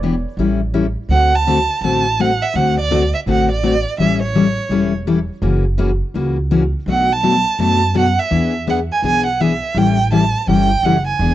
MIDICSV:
0, 0, Header, 1, 5, 480
1, 0, Start_track
1, 0, Tempo, 360794
1, 1458, Time_signature, 4, 2, 24, 8
1, 15091, End_track
2, 0, Start_track
2, 0, Title_t, "Violin"
2, 0, Program_c, 0, 40
2, 1481, Note_on_c, 0, 78, 97
2, 1801, Note_on_c, 0, 81, 100
2, 1821, Note_off_c, 0, 78, 0
2, 2438, Note_off_c, 0, 81, 0
2, 2447, Note_on_c, 0, 81, 98
2, 2942, Note_on_c, 0, 78, 94
2, 2962, Note_off_c, 0, 81, 0
2, 3221, Note_on_c, 0, 76, 84
2, 3241, Note_off_c, 0, 78, 0
2, 3405, Note_on_c, 0, 78, 89
2, 3425, Note_off_c, 0, 76, 0
2, 3692, Note_off_c, 0, 78, 0
2, 3725, Note_on_c, 0, 74, 93
2, 4149, Note_off_c, 0, 74, 0
2, 4185, Note_on_c, 0, 76, 77
2, 4258, Note_off_c, 0, 76, 0
2, 4384, Note_on_c, 0, 78, 88
2, 4642, Note_off_c, 0, 78, 0
2, 4680, Note_on_c, 0, 74, 91
2, 5271, Note_off_c, 0, 74, 0
2, 5325, Note_on_c, 0, 76, 85
2, 5592, Note_off_c, 0, 76, 0
2, 5631, Note_on_c, 0, 73, 83
2, 6520, Note_off_c, 0, 73, 0
2, 9190, Note_on_c, 0, 78, 93
2, 9482, Note_on_c, 0, 81, 107
2, 9502, Note_off_c, 0, 78, 0
2, 10117, Note_off_c, 0, 81, 0
2, 10136, Note_on_c, 0, 81, 101
2, 10563, Note_off_c, 0, 81, 0
2, 10623, Note_on_c, 0, 78, 88
2, 10899, Note_on_c, 0, 76, 89
2, 10919, Note_off_c, 0, 78, 0
2, 11368, Note_off_c, 0, 76, 0
2, 11567, Note_on_c, 0, 78, 82
2, 11696, Note_off_c, 0, 78, 0
2, 11868, Note_on_c, 0, 80, 83
2, 12019, Note_off_c, 0, 80, 0
2, 12057, Note_on_c, 0, 80, 98
2, 12314, Note_off_c, 0, 80, 0
2, 12322, Note_on_c, 0, 78, 83
2, 12515, Note_on_c, 0, 76, 88
2, 12535, Note_off_c, 0, 78, 0
2, 13009, Note_on_c, 0, 79, 97
2, 13029, Note_off_c, 0, 76, 0
2, 13473, Note_off_c, 0, 79, 0
2, 13482, Note_on_c, 0, 81, 86
2, 13917, Note_off_c, 0, 81, 0
2, 13973, Note_on_c, 0, 79, 96
2, 14432, Note_on_c, 0, 78, 89
2, 14451, Note_off_c, 0, 79, 0
2, 14721, Note_off_c, 0, 78, 0
2, 14729, Note_on_c, 0, 80, 88
2, 15091, Note_off_c, 0, 80, 0
2, 15091, End_track
3, 0, Start_track
3, 0, Title_t, "Steel pan"
3, 0, Program_c, 1, 114
3, 0, Note_on_c, 1, 74, 91
3, 452, Note_off_c, 1, 74, 0
3, 15091, End_track
4, 0, Start_track
4, 0, Title_t, "Steel-string acoustic guitar"
4, 0, Program_c, 2, 25
4, 38, Note_on_c, 2, 52, 76
4, 45, Note_on_c, 2, 59, 76
4, 46, Note_on_c, 2, 62, 81
4, 50, Note_on_c, 2, 67, 84
4, 179, Note_off_c, 2, 52, 0
4, 183, Note_off_c, 2, 59, 0
4, 183, Note_off_c, 2, 62, 0
4, 185, Note_off_c, 2, 67, 0
4, 514, Note_on_c, 2, 55, 60
4, 518, Note_on_c, 2, 52, 61
4, 521, Note_on_c, 2, 69, 66
4, 525, Note_on_c, 2, 61, 62
4, 527, Note_on_c, 2, 64, 67
4, 790, Note_off_c, 2, 55, 0
4, 793, Note_off_c, 2, 52, 0
4, 794, Note_off_c, 2, 69, 0
4, 796, Note_off_c, 2, 61, 0
4, 797, Note_off_c, 2, 64, 0
4, 980, Note_on_c, 2, 52, 73
4, 982, Note_on_c, 2, 61, 77
4, 985, Note_on_c, 2, 55, 75
4, 985, Note_on_c, 2, 64, 79
4, 999, Note_on_c, 2, 69, 82
4, 1130, Note_off_c, 2, 52, 0
4, 1130, Note_off_c, 2, 61, 0
4, 1132, Note_off_c, 2, 55, 0
4, 1132, Note_off_c, 2, 64, 0
4, 1139, Note_off_c, 2, 69, 0
4, 1469, Note_on_c, 2, 50, 65
4, 1474, Note_on_c, 2, 57, 61
4, 1475, Note_on_c, 2, 60, 65
4, 1479, Note_on_c, 2, 69, 64
4, 1480, Note_on_c, 2, 66, 60
4, 1747, Note_off_c, 2, 50, 0
4, 1750, Note_off_c, 2, 57, 0
4, 1750, Note_off_c, 2, 60, 0
4, 1753, Note_off_c, 2, 66, 0
4, 1753, Note_off_c, 2, 69, 0
4, 1954, Note_on_c, 2, 50, 78
4, 1959, Note_on_c, 2, 57, 79
4, 1964, Note_on_c, 2, 60, 83
4, 1966, Note_on_c, 2, 66, 82
4, 1969, Note_on_c, 2, 69, 92
4, 2096, Note_off_c, 2, 50, 0
4, 2098, Note_off_c, 2, 57, 0
4, 2101, Note_off_c, 2, 60, 0
4, 2102, Note_off_c, 2, 66, 0
4, 2103, Note_off_c, 2, 69, 0
4, 2440, Note_on_c, 2, 50, 65
4, 2447, Note_on_c, 2, 57, 68
4, 2452, Note_on_c, 2, 69, 68
4, 2454, Note_on_c, 2, 60, 69
4, 2455, Note_on_c, 2, 66, 68
4, 2712, Note_off_c, 2, 50, 0
4, 2716, Note_off_c, 2, 57, 0
4, 2718, Note_off_c, 2, 69, 0
4, 2719, Note_off_c, 2, 60, 0
4, 2720, Note_off_c, 2, 66, 0
4, 2917, Note_on_c, 2, 50, 73
4, 2921, Note_on_c, 2, 57, 73
4, 2927, Note_on_c, 2, 66, 85
4, 2928, Note_on_c, 2, 60, 82
4, 2928, Note_on_c, 2, 69, 83
4, 3057, Note_off_c, 2, 50, 0
4, 3059, Note_off_c, 2, 57, 0
4, 3062, Note_off_c, 2, 60, 0
4, 3062, Note_off_c, 2, 66, 0
4, 3062, Note_off_c, 2, 69, 0
4, 3393, Note_on_c, 2, 50, 63
4, 3400, Note_on_c, 2, 57, 61
4, 3401, Note_on_c, 2, 60, 67
4, 3406, Note_on_c, 2, 66, 65
4, 3410, Note_on_c, 2, 69, 68
4, 3668, Note_off_c, 2, 50, 0
4, 3672, Note_off_c, 2, 57, 0
4, 3672, Note_off_c, 2, 60, 0
4, 3675, Note_off_c, 2, 66, 0
4, 3677, Note_off_c, 2, 69, 0
4, 3870, Note_on_c, 2, 50, 86
4, 3870, Note_on_c, 2, 57, 78
4, 3875, Note_on_c, 2, 60, 83
4, 3881, Note_on_c, 2, 66, 86
4, 3885, Note_on_c, 2, 69, 83
4, 4013, Note_off_c, 2, 50, 0
4, 4013, Note_off_c, 2, 57, 0
4, 4016, Note_off_c, 2, 60, 0
4, 4018, Note_off_c, 2, 66, 0
4, 4020, Note_off_c, 2, 69, 0
4, 4350, Note_on_c, 2, 50, 63
4, 4357, Note_on_c, 2, 57, 70
4, 4361, Note_on_c, 2, 60, 69
4, 4367, Note_on_c, 2, 66, 75
4, 4371, Note_on_c, 2, 69, 69
4, 4626, Note_off_c, 2, 50, 0
4, 4630, Note_off_c, 2, 57, 0
4, 4632, Note_off_c, 2, 60, 0
4, 4635, Note_off_c, 2, 66, 0
4, 4637, Note_off_c, 2, 69, 0
4, 4833, Note_on_c, 2, 60, 85
4, 4834, Note_on_c, 2, 50, 73
4, 4835, Note_on_c, 2, 57, 73
4, 4838, Note_on_c, 2, 66, 79
4, 4842, Note_on_c, 2, 69, 89
4, 4974, Note_off_c, 2, 60, 0
4, 4975, Note_off_c, 2, 50, 0
4, 4975, Note_off_c, 2, 57, 0
4, 4976, Note_off_c, 2, 66, 0
4, 4978, Note_off_c, 2, 69, 0
4, 5319, Note_on_c, 2, 52, 61
4, 5320, Note_on_c, 2, 55, 60
4, 5320, Note_on_c, 2, 61, 64
4, 5327, Note_on_c, 2, 69, 65
4, 5330, Note_on_c, 2, 64, 61
4, 5590, Note_off_c, 2, 52, 0
4, 5591, Note_off_c, 2, 55, 0
4, 5591, Note_off_c, 2, 61, 0
4, 5594, Note_off_c, 2, 69, 0
4, 5596, Note_off_c, 2, 64, 0
4, 5789, Note_on_c, 2, 61, 79
4, 5790, Note_on_c, 2, 52, 72
4, 5791, Note_on_c, 2, 55, 92
4, 5793, Note_on_c, 2, 64, 84
4, 5800, Note_on_c, 2, 69, 91
4, 5932, Note_off_c, 2, 61, 0
4, 5933, Note_off_c, 2, 52, 0
4, 5933, Note_off_c, 2, 55, 0
4, 5934, Note_off_c, 2, 64, 0
4, 5937, Note_off_c, 2, 69, 0
4, 6259, Note_on_c, 2, 52, 68
4, 6262, Note_on_c, 2, 55, 67
4, 6269, Note_on_c, 2, 64, 69
4, 6273, Note_on_c, 2, 61, 65
4, 6276, Note_on_c, 2, 69, 77
4, 6541, Note_off_c, 2, 52, 0
4, 6542, Note_off_c, 2, 55, 0
4, 6545, Note_off_c, 2, 64, 0
4, 6547, Note_off_c, 2, 61, 0
4, 6549, Note_off_c, 2, 69, 0
4, 6745, Note_on_c, 2, 52, 73
4, 6746, Note_on_c, 2, 55, 81
4, 6751, Note_on_c, 2, 61, 77
4, 6752, Note_on_c, 2, 69, 83
4, 6757, Note_on_c, 2, 64, 85
4, 6890, Note_off_c, 2, 52, 0
4, 6890, Note_off_c, 2, 55, 0
4, 6893, Note_off_c, 2, 61, 0
4, 6893, Note_off_c, 2, 69, 0
4, 6896, Note_off_c, 2, 64, 0
4, 7212, Note_on_c, 2, 49, 57
4, 7219, Note_on_c, 2, 58, 64
4, 7219, Note_on_c, 2, 66, 72
4, 7221, Note_on_c, 2, 52, 60
4, 7223, Note_on_c, 2, 61, 63
4, 7497, Note_off_c, 2, 49, 0
4, 7501, Note_off_c, 2, 58, 0
4, 7501, Note_off_c, 2, 66, 0
4, 7502, Note_off_c, 2, 52, 0
4, 7502, Note_off_c, 2, 61, 0
4, 7685, Note_on_c, 2, 49, 71
4, 7689, Note_on_c, 2, 52, 87
4, 7698, Note_on_c, 2, 58, 86
4, 7702, Note_on_c, 2, 66, 84
4, 7705, Note_on_c, 2, 61, 81
4, 7840, Note_off_c, 2, 49, 0
4, 7842, Note_off_c, 2, 52, 0
4, 7847, Note_off_c, 2, 58, 0
4, 7848, Note_off_c, 2, 66, 0
4, 7850, Note_off_c, 2, 61, 0
4, 8183, Note_on_c, 2, 49, 61
4, 8187, Note_on_c, 2, 58, 65
4, 8187, Note_on_c, 2, 61, 64
4, 8188, Note_on_c, 2, 52, 63
4, 8199, Note_on_c, 2, 66, 71
4, 8462, Note_off_c, 2, 49, 0
4, 8465, Note_off_c, 2, 52, 0
4, 8465, Note_off_c, 2, 58, 0
4, 8465, Note_off_c, 2, 61, 0
4, 8471, Note_off_c, 2, 66, 0
4, 8659, Note_on_c, 2, 49, 77
4, 8660, Note_on_c, 2, 52, 79
4, 8663, Note_on_c, 2, 58, 79
4, 8669, Note_on_c, 2, 61, 83
4, 8669, Note_on_c, 2, 66, 88
4, 8807, Note_off_c, 2, 49, 0
4, 8808, Note_off_c, 2, 52, 0
4, 8809, Note_off_c, 2, 58, 0
4, 8812, Note_off_c, 2, 61, 0
4, 8812, Note_off_c, 2, 66, 0
4, 9147, Note_on_c, 2, 47, 59
4, 9153, Note_on_c, 2, 54, 59
4, 9155, Note_on_c, 2, 57, 60
4, 9161, Note_on_c, 2, 62, 64
4, 9162, Note_on_c, 2, 66, 65
4, 9425, Note_off_c, 2, 47, 0
4, 9428, Note_off_c, 2, 54, 0
4, 9429, Note_off_c, 2, 57, 0
4, 9432, Note_off_c, 2, 62, 0
4, 9432, Note_off_c, 2, 66, 0
4, 9620, Note_on_c, 2, 47, 83
4, 9624, Note_on_c, 2, 54, 81
4, 9626, Note_on_c, 2, 57, 80
4, 9630, Note_on_c, 2, 62, 84
4, 9636, Note_on_c, 2, 66, 91
4, 9768, Note_off_c, 2, 47, 0
4, 9770, Note_off_c, 2, 54, 0
4, 9771, Note_off_c, 2, 57, 0
4, 9773, Note_off_c, 2, 62, 0
4, 9776, Note_off_c, 2, 66, 0
4, 10103, Note_on_c, 2, 47, 62
4, 10107, Note_on_c, 2, 57, 67
4, 10108, Note_on_c, 2, 54, 72
4, 10113, Note_on_c, 2, 62, 67
4, 10113, Note_on_c, 2, 66, 68
4, 10383, Note_off_c, 2, 47, 0
4, 10385, Note_off_c, 2, 54, 0
4, 10385, Note_off_c, 2, 57, 0
4, 10388, Note_off_c, 2, 62, 0
4, 10388, Note_off_c, 2, 66, 0
4, 10566, Note_on_c, 2, 47, 79
4, 10574, Note_on_c, 2, 57, 79
4, 10579, Note_on_c, 2, 54, 76
4, 10579, Note_on_c, 2, 62, 80
4, 10581, Note_on_c, 2, 66, 88
4, 10721, Note_off_c, 2, 47, 0
4, 10725, Note_off_c, 2, 57, 0
4, 10727, Note_off_c, 2, 54, 0
4, 10728, Note_off_c, 2, 62, 0
4, 10728, Note_off_c, 2, 66, 0
4, 11051, Note_on_c, 2, 52, 58
4, 11053, Note_on_c, 2, 59, 68
4, 11060, Note_on_c, 2, 62, 68
4, 11065, Note_on_c, 2, 68, 67
4, 11337, Note_off_c, 2, 52, 0
4, 11338, Note_off_c, 2, 59, 0
4, 11342, Note_off_c, 2, 62, 0
4, 11344, Note_off_c, 2, 68, 0
4, 11531, Note_on_c, 2, 52, 74
4, 11540, Note_on_c, 2, 62, 79
4, 11541, Note_on_c, 2, 59, 83
4, 11545, Note_on_c, 2, 68, 86
4, 11684, Note_off_c, 2, 52, 0
4, 11688, Note_off_c, 2, 62, 0
4, 11689, Note_off_c, 2, 59, 0
4, 11690, Note_off_c, 2, 68, 0
4, 12023, Note_on_c, 2, 59, 72
4, 12025, Note_on_c, 2, 52, 68
4, 12029, Note_on_c, 2, 62, 67
4, 12038, Note_on_c, 2, 68, 72
4, 12304, Note_off_c, 2, 52, 0
4, 12304, Note_off_c, 2, 59, 0
4, 12306, Note_off_c, 2, 62, 0
4, 12311, Note_off_c, 2, 68, 0
4, 12509, Note_on_c, 2, 52, 77
4, 12518, Note_on_c, 2, 59, 79
4, 12523, Note_on_c, 2, 68, 85
4, 12527, Note_on_c, 2, 62, 89
4, 12653, Note_off_c, 2, 52, 0
4, 12658, Note_off_c, 2, 59, 0
4, 12660, Note_off_c, 2, 68, 0
4, 12662, Note_off_c, 2, 62, 0
4, 12979, Note_on_c, 2, 52, 59
4, 12985, Note_on_c, 2, 55, 62
4, 12992, Note_on_c, 2, 64, 73
4, 12993, Note_on_c, 2, 61, 66
4, 12997, Note_on_c, 2, 69, 72
4, 13262, Note_off_c, 2, 52, 0
4, 13265, Note_off_c, 2, 55, 0
4, 13268, Note_off_c, 2, 64, 0
4, 13269, Note_off_c, 2, 61, 0
4, 13271, Note_off_c, 2, 69, 0
4, 13457, Note_on_c, 2, 61, 81
4, 13458, Note_on_c, 2, 52, 85
4, 13460, Note_on_c, 2, 55, 79
4, 13465, Note_on_c, 2, 64, 88
4, 13470, Note_on_c, 2, 69, 88
4, 13607, Note_off_c, 2, 52, 0
4, 13607, Note_off_c, 2, 61, 0
4, 13609, Note_off_c, 2, 55, 0
4, 13611, Note_off_c, 2, 64, 0
4, 13613, Note_off_c, 2, 69, 0
4, 13945, Note_on_c, 2, 52, 63
4, 13946, Note_on_c, 2, 55, 66
4, 13947, Note_on_c, 2, 61, 72
4, 13952, Note_on_c, 2, 64, 72
4, 13958, Note_on_c, 2, 69, 69
4, 14225, Note_off_c, 2, 52, 0
4, 14225, Note_off_c, 2, 55, 0
4, 14226, Note_off_c, 2, 61, 0
4, 14228, Note_off_c, 2, 64, 0
4, 14232, Note_off_c, 2, 69, 0
4, 14434, Note_on_c, 2, 52, 77
4, 14438, Note_on_c, 2, 55, 85
4, 14440, Note_on_c, 2, 61, 77
4, 14445, Note_on_c, 2, 64, 83
4, 14449, Note_on_c, 2, 69, 89
4, 14576, Note_off_c, 2, 52, 0
4, 14578, Note_off_c, 2, 55, 0
4, 14579, Note_off_c, 2, 61, 0
4, 14581, Note_off_c, 2, 64, 0
4, 14583, Note_off_c, 2, 69, 0
4, 14908, Note_on_c, 2, 59, 63
4, 14911, Note_on_c, 2, 52, 67
4, 14915, Note_on_c, 2, 62, 64
4, 14919, Note_on_c, 2, 68, 71
4, 15091, Note_off_c, 2, 52, 0
4, 15091, Note_off_c, 2, 59, 0
4, 15091, Note_off_c, 2, 62, 0
4, 15091, Note_off_c, 2, 68, 0
4, 15091, End_track
5, 0, Start_track
5, 0, Title_t, "Upright bass"
5, 0, Program_c, 3, 32
5, 0, Note_on_c, 3, 28, 80
5, 300, Note_off_c, 3, 28, 0
5, 492, Note_on_c, 3, 33, 75
5, 1262, Note_off_c, 3, 33, 0
5, 1446, Note_on_c, 3, 38, 76
5, 2218, Note_off_c, 3, 38, 0
5, 2406, Note_on_c, 3, 33, 71
5, 3178, Note_off_c, 3, 33, 0
5, 3377, Note_on_c, 3, 38, 82
5, 4144, Note_off_c, 3, 38, 0
5, 4340, Note_on_c, 3, 33, 74
5, 5105, Note_off_c, 3, 33, 0
5, 5300, Note_on_c, 3, 33, 83
5, 6065, Note_off_c, 3, 33, 0
5, 6244, Note_on_c, 3, 28, 76
5, 7016, Note_off_c, 3, 28, 0
5, 7207, Note_on_c, 3, 30, 86
5, 7978, Note_off_c, 3, 30, 0
5, 8173, Note_on_c, 3, 37, 75
5, 8941, Note_off_c, 3, 37, 0
5, 9128, Note_on_c, 3, 35, 81
5, 9899, Note_off_c, 3, 35, 0
5, 10094, Note_on_c, 3, 42, 75
5, 10863, Note_off_c, 3, 42, 0
5, 11054, Note_on_c, 3, 40, 80
5, 11823, Note_off_c, 3, 40, 0
5, 12006, Note_on_c, 3, 35, 76
5, 12778, Note_off_c, 3, 35, 0
5, 12966, Note_on_c, 3, 33, 85
5, 13738, Note_off_c, 3, 33, 0
5, 13932, Note_on_c, 3, 31, 75
5, 14342, Note_off_c, 3, 31, 0
5, 14408, Note_on_c, 3, 30, 83
5, 14820, Note_off_c, 3, 30, 0
5, 14891, Note_on_c, 3, 28, 88
5, 15091, Note_off_c, 3, 28, 0
5, 15091, End_track
0, 0, End_of_file